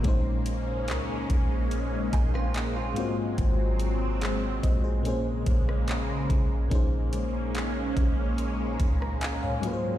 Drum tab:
HH |x-x-x-x-x-x-x-x-|x-x-x-x-x-x-x-x-|x-x-x-x-x-x-x-x-|
CP |----x-------x---|----x-------x---|----x-------x---|
SD |-----------r----|-----------r----|-----------r----|
BD |o-----o---o-----|o-----o---o---o-|o-----o---o-----|